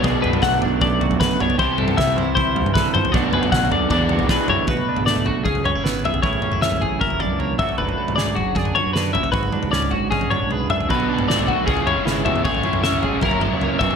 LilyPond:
<<
  \new Staff \with { instrumentName = "Clean electric guitar" } { \time 4/4 \key b \dorian \tempo 4 = 154 d''8 b'8 fis''8 d''8 d''4 b'8 cis''8 | c''8 a'8 e''8 c''8 c''4 b'8 c''8 | d''8 b'8 fis''8 d''8 d''4 b'8 cis''8 | b'4 d''8 fis'8 gis'8 cis''8 b'8 e''8 |
cis''4 e''8 gis'8 ais'8 d''8 cis''8 e''8 | b'4 d''8 fis'8 gis'8 cis''8 b'8 e''8 | b'4 d''8 fis'8 gis'8 cis''8 b'8 e''8 | b'4 d''8 fis'8 gis'8 cis''8 b'8 e''8 |
cis''4 e''8 gis'8 ais'8 d''8 cis''8 e''8 | }
  \new Staff \with { instrumentName = "Overdriven electric guitar" } { \time 4/4 \key b \dorian <b, fis b d'>2.~ <b, fis b d'>8 r8 | <c g c' e'>1 | <b, fis b d' fis'>2 <e b d' gis'>2 | r1 |
r1 | r1 | r1 | <b, fis b d' fis' b'>8 <b d' fis' b'>8 <b, fis b d' fis' b'>8 <b d' fis' b'>8 <cis gis cis' e' gis' cis''>8 <cis gis cis' e' gis' cis''>8 <cis' e' gis' cis''>8 <cis' e' gis' cis''>8 |
<a cis' e' a' cis''>8 <e' a' cis''>8 <a cis' e' a' cis''>8 <e' a' cis''>8 <fis cis' e' ais' cis''>8 <fis cis' e' ais' cis''>8 <cis' e' ais' cis''>8 <fis b fis' b' d''>8 | }
  \new Staff \with { instrumentName = "Clean electric guitar" } { \time 4/4 \key b \dorian << { <a d' gis'>8 d'8 a8 d'8 a8 fis'4 d'8 | <e e' g'>8 g'8 e'4 e'4 a'4 | <fis a d' fis'>8 gis'4. d'8 fis'8 d'8 a8 | fis'8 d'8 a8 fis'8 gis'8 cis'16 e'16 b8 gis'8 |
<e cis' e' gis'>8 cis'16 e'16 cis'8 gis'8 e'8 d'8 ais8 <fis a d' fis'>8 | d'8 a8 gis'4 d'8 fis'8 d'8 e'16 fis'16 | fis'8 d'8 cis'8 fis'8 cis'8 d'8 gis'8 d'8 | fis'8 d'8 a8 fis'8 gis'8 e'4. |
gis'8 e'8 cis'8 gis'8 e'4 ais8 fis'8 | } \\ { b,4 fis4 fis,4. b,8 | c4. e4 g,4. | b,4 cis8 d8 e,4. e8 | b,2 cis2 |
a,2 fis,4. fis,8~ | fis,2.~ fis,8 fis,8 | gis,1 | b,2 cis4 cis8 b,8 |
a,2 fis,4. fis,8 | } >> }
  \new Staff \with { instrumentName = "Fingered electric bass" } { \clef bass \time 4/4 \key b \dorian b,,16 r16 fis,8 b,8 b,,4~ b,,16 fis,8 r16 b,,8 | c,16 r16 g,8 c8 c,4~ c,16 g,8 r16 g,8 | b,,16 r16 fis,8 b,8 d,8 e,8. b,,8 r16 fis,16 r16 | b,,8 r16 gis,8. b,,8 cis,8. gis,,8. b,,8 |
a,,8 r16 fis,8. a,,8 fis,,8. cis,8. fis,,16 r16 | fis,,8 r16 gis,8. fis,,8 fis,8 r16 fis,8. fis,,8 | gis,,8 r16 cis,8. gis,,8 gis,8. b,,8. fis,8 | b,,8 r16 gis,8. b,,8 cis,8. gis,,8. e,8 |
a,,8 r16 fis,8. gis,,8 fis,,8. cis,8. fis,,16 r16 | }
  \new DrumStaff \with { instrumentName = "Drums" } \drummode { \time 4/4 <bd tomfh>8 tomfh16 <tomfh toml>16 <bd sn toml>16 tomfh16 <tomfh toml>8 <bd tomfh>8 tomfh16 tomfh16 <bd sn>8 toml16 tomfh16 | <bd tomfh>8 tomfh16 <tomfh toml>16 <bd sn toml>16 tomfh16 <tomfh toml>8 <bd tomfh>8 tomfh16 tomfh16 <bd sn>8 toml16 tomfh16 | <bd tomfh>8 tomfh16 <tomfh toml>16 <bd sn toml>16 tomfh16 <tomfh toml>8 <bd tomfh>8 tomfh16 tomfh16 <bd sn>8 tomfh8 | <bd tomfh>16 tomfh8 tomfh16 sn16 tomfh16 tomfh8 <bd tomfh>16 tomfh16 toml8 sn8 <tomfh toml>16 tomfh16 |
<bd tomfh>16 tomfh16 toml16 tomfh16 sn16 tomfh16 tomfh8 <bd tomfh>16 tomfh16 toml8 tomfh8 <bd tomfh toml>16 tomfh16 | tomfh16 tomfh8 tomfh16 sn16 tomfh16 tomfh8 <bd tomfh>16 tomfh16 toml8 sn8 <tomfh toml>16 tomfh16 | <bd tomfh>16 tomfh16 toml16 tomfh16 sn16 tomfh16 tomfh8 <bd tomfh>16 tomfh16 toml8 tomfh8 <tomfh toml>16 tomfh16 | <bd tomfh>16 tomfh8 tomfh16 sn16 tomfh16 tomfh8 <bd tomfh>16 tomfh16 toml8 sn8 <tomfh toml>16 tomfh16 |
<bd tomfh>16 tomfh16 toml16 tomfh16 sn16 tomfh16 tomfh8 <bd tomfh>16 tomfh16 toml8 tomfh8 <bd tomfh toml>16 tomfh16 | }
>>